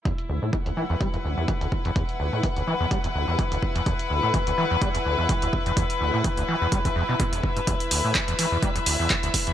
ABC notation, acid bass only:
X:1
M:4/4
L:1/16
Q:"Swing 16ths" 1/4=126
K:Clyd
V:1 name="Acid bass" clef=bass
E,, z D,, A,, E, D,, E, E,, G, E,, D,, E,, E, D,, z E,, | E,, z D,, A,, E, D,, E, E,, G, E,, D,, E,, E, D,, z E,, | E,, z D,, A,, E, D,, E, E,, G, E,, D,, E,, E, D,, z E,, | E,, z D,, A,, E, D,, E, E,, G, E,, E,, B,, B,, E,,, z G,, |
E,, z D,, A,, E, E,, E, E,, G, E,, D,, E,, E, D,, z E,, |]